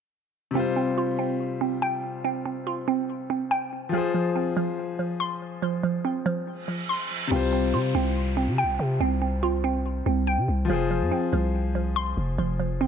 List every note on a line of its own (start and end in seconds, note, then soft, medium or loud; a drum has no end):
0.51 3.87 C3 medium
0.51 3.89 G3 medium
0.55 0.75 C4 medium
0.55 3.90 F4 medium
0.55 3.91 C5 medium
0.77 1.17 C4 medium
0.98 2.24 F4 medium
1.19 1.60 C4 medium
1.61 2.23 C4 medium
1.82 3.09 G5 loud
2.24 2.44 C4 loud
2.46 2.87 C4 medium
2.67 3.93 F4 medium
2.88 3.29 C4 medium
3.30 3.93 C4 medium
3.51 3.93 G5 loud
3.89 7.25 F3 medium
3.89 7.27 F4 medium
3.93 4.13 F3 medium
3.93 7.28 G#4 medium
3.97 7.29 C5 medium
4.14 4.55 F3 medium
4.36 5.62 C4 medium
4.57 4.98 F3 medium
4.99 5.61 F3 medium
5.20 6.47 C6 loud
5.62 5.82 F3 medium
5.83 6.25 F3 medium
6.05 7.30 C4 medium
6.26 6.67 F3 medium
6.47 reverse cymbal medium
6.68 7.31 F3 medium
6.89 7.31 C6 loud
7.27 10.63 C3 medium
7.27 10.65 G3 medium
7.27 7.51 C4 medium
7.27 downlifter medium
7.31 7.75 C2 loud
7.31 10.66 F4 medium
7.36 10.68 C5 medium
7.53 7.94 C4 medium
7.74 7.94 C3 loud
7.74 9.00 F4 medium
7.95 8.49 C2 loud
7.95 8.36 C4 medium
8.37 8.99 C4 medium
8.48 8.65 C3 loud
8.58 9.85 G5 loud
8.63 8.79 C2 loud
8.79 9.00 C3 loud
9.00 10.02 C2 loud
9.00 9.20 C4 loud
9.22 9.63 C4 medium
9.43 10.70 F4 medium
9.64 10.05 C4 medium
10.06 10.39 C2 loud
10.06 10.70 C4 medium
10.27 10.70 G5 loud
10.38 10.48 C3 loud
10.48 10.69 C2 loud
10.65 12.87 F3 medium
10.65 12.87 F4 medium
10.69 11.03 F1 loud
10.69 10.89 F3 medium
10.69 12.87 G#4 medium
10.69 12.87 C5 medium
10.91 11.32 F3 medium
11.01 11.11 F2 loud
11.12 12.38 C4 medium
11.33 12.14 C2 loud
11.33 11.74 F3 medium
11.75 12.37 F3 medium
11.96 12.87 C6 loud
12.17 12.38 F1 loud
12.38 12.87 F1 loud
12.38 12.58 F3 medium
12.60 12.87 F3 medium
12.81 12.87 C4 medium